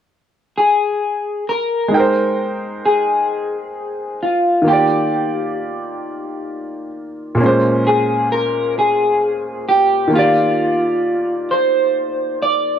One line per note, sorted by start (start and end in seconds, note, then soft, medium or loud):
0.58 1.44 G#4 medium
1.49 2.81 A#4 medium
1.88 4.59 G#3 medium
1.88 4.61 D#4 medium
1.94 4.64 A#4 medium
1.94 4.62 G5 medium
2.00 4.65 C5 medium
2.86 4.25 G#4 medium
4.23 4.68 F4 medium
4.62 7.33 D#3 medium
4.62 7.34 A#3 medium
4.67 7.35 F4 soft
4.67 6.90 G4 medium
4.67 7.37 G4 soft
4.73 7.38 D5 medium
7.35 10.05 A#2 medium
7.35 10.07 A#3 medium
7.40 10.10 G#3 medium
7.40 10.08 C#4 medium
7.46 10.11 C5 medium
7.87 8.32 G#4 medium
8.32 8.78 A#4 medium
8.79 9.68 G#4 medium
9.69 10.14 G4 medium
10.08 12.78 D#3 medium
10.08 12.79 A#3 soft
10.13 12.79 F4 medium
10.13 11.54 F4 medium
10.13 12.79 G4 medium
10.19 12.79 D5 medium
11.51 12.42 C5 medium
12.42 12.79 D5 medium